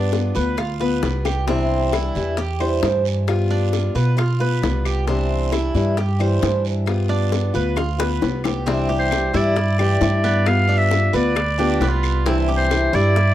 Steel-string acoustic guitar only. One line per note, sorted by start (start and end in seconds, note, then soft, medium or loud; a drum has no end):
0.00 0.10 G3 medium
0.00 0.12 B3 medium
0.00 0.12 F4 medium
0.12 0.34 G3 medium
0.12 0.34 B3 soft
0.12 0.33 F4 medium
0.35 0.57 B3 medium
0.35 0.57 F4 medium
0.57 muted steel-string acoustic guitar stroke medium
0.80 1.02 B3 medium
0.80 1.02 F4 medium
1.02 1.47 G3 soft
1.02 1.47 B3 soft
1.02 1.48 F4 medium
1.48 1.92 C3 medium
1.48 1.92 E3 medium
1.48 1.92 G3 medium
1.48 1.92 D4 medium
1.48 1.92 E4 medium
1.93 2.14 E3 soft
1.93 2.15 G3 medium
1.93 2.15 D4 medium
1.93 2.14 E4 medium
2.15 2.37 E3 medium
2.15 2.37 G3 medium
2.15 2.37 D4 medium
2.15 2.37 E4 medium
2.37 muted steel-string acoustic guitar stroke medium
2.60 2.81 E3 medium
2.60 2.82 G3 medium
2.60 2.82 D4 medium
2.60 2.82 E4 medium
2.83 3.27 E3 soft
2.83 3.26 G3 soft
2.83 3.27 D4 soft
2.83 3.27 E4 medium
3.27 3.71 G3 medium
3.27 3.72 B3 medium
3.27 3.73 F4 medium
3.72 3.94 G3 medium
3.72 3.95 B3 soft
3.72 3.94 F4 medium
3.95 4.16 B3 medium
3.95 4.16 F4 medium
4.17 muted steel-string acoustic guitar stroke medium
4.40 4.62 B3 medium
4.40 4.62 F4 medium
4.62 5.06 G3 medium
4.62 5.07 B3 medium
4.62 5.07 F4 medium
5.07 5.52 C3 medium
5.07 5.51 E3 medium
5.07 5.51 G3 medium
5.07 5.52 D4 medium
5.07 5.52 E4 medium
5.52 5.74 E3 medium
5.52 5.74 G3 medium
5.52 5.74 D4 medium
5.52 5.73 E4 medium
5.74 5.96 E3 medium
5.74 5.97 G3 medium
5.74 5.97 D4 medium
5.74 5.96 E4 medium
5.98 muted steel-string acoustic guitar stroke medium
6.19 6.41 E3 medium
6.19 6.41 G3 medium
6.19 6.42 D4 medium
6.19 6.41 E4 medium
6.42 6.86 E3 medium
6.42 6.85 G3 medium
6.42 6.87 D4 medium
6.42 6.87 E4 medium
6.86 7.30 G3 medium
6.86 7.31 B3 medium
6.86 7.32 F4 medium
7.31 7.53 G3 soft
7.31 7.54 B3 medium
7.31 7.52 F4 medium
7.54 7.75 B3 medium
7.54 7.76 F4 medium
7.76 muted steel-string acoustic guitar stroke medium
7.98 8.21 B3 medium
7.98 8.21 F4 medium
8.21 8.66 G3 soft
8.21 8.66 B3 medium
8.21 8.67 F4 medium
8.66 9.11 C3 medium
8.66 9.10 E3 medium
8.66 9.11 G3 medium
8.66 9.11 D4 medium
8.66 9.11 E4 medium
9.11 9.33 E3 medium
9.11 9.33 G3 medium
9.11 9.33 D4 medium
9.11 9.32 E4 medium
9.34 9.55 E3 medium
9.34 9.55 G3 medium
9.34 9.56 D4 medium
9.34 9.56 E4 medium
9.56 muted steel-string acoustic guitar stroke medium
9.79 10.00 E3 medium
9.79 10.01 G3 medium
9.79 10.01 D4 medium
9.79 10.01 E4 medium
10.01 10.46 E3 soft
10.01 10.45 G3 soft
10.01 10.46 D4 soft
10.01 10.46 E4 medium
10.46 10.90 G3 medium
10.46 10.91 B3 medium
10.46 10.91 F4 medium
10.91 11.13 G3 medium
10.91 11.13 B3 medium
10.91 11.13 F4 medium
11.14 11.35 B3 medium
11.14 11.35 F4 medium
11.36 muted steel-string acoustic guitar stroke medium
11.59 11.80 B3 medium
11.59 11.80 F4 medium
11.81 12.25 G3 soft
11.81 12.25 B3 medium
11.81 12.26 F4 medium
12.26 12.70 C3 medium
12.26 12.69 E3 medium
12.26 12.70 G3 medium
12.26 12.70 D4 medium
12.26 12.71 E4 medium
12.70 12.92 E3 medium
12.70 12.93 G3 medium
12.70 12.93 D4 medium
12.70 12.92 E4 medium
12.93 13.15 E3 medium
12.93 13.15 G3 medium
12.93 13.15 D4 medium
12.93 13.15 E4 medium
13.16 muted steel-string acoustic guitar stroke medium